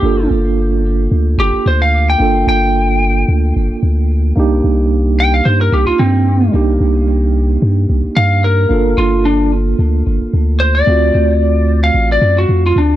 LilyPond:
<<
  \new Staff \with { instrumentName = "Lead electric guitar" } { \time 4/4 \key g \minor \tempo 4 = 111 g'8 r2 g'8 c''16 f''8 g''16~ | g''8 g''2 r4. | r4. g''16 f''16 c''16 bes'16 g'16 f'16 c'4 | r2. f''8 bes'8~ |
bes'8 f'8 d'8 r2 c''16 d''16~ | d''4.~ d''16 eis''8 d''8 fis'8 eis'16 d'8 | }
  \new Staff \with { instrumentName = "Tine electric piano" } { \time 4/4 \key g \minor <bes d' f' a'>1 | <bes d' f' a'>1 | <bes d' ees' g'>1 | <bes d' ees' g'>1 |
<bes d' f' a'>1 | <a c' eis' fis'>1 | }
  \new Staff \with { instrumentName = "Sub bass" } { \clef bass \time 4/4 \key g \minor g,,8 g,,4. d,8 g,,16 g,,16 d,4 | g,,8 g,,4. d,8 g,,16 g,,16 d,4 | c,8 c,4. g,8 c,16 c,16 g,4 | c,8 c,4. g,8 c,16 c,16 g,4 |
g,,8 g,,4. d,8 g,,16 g,,16 d,4 | d,8 d,4. a,,8 fis,8 eis,8 d,8 | }
>>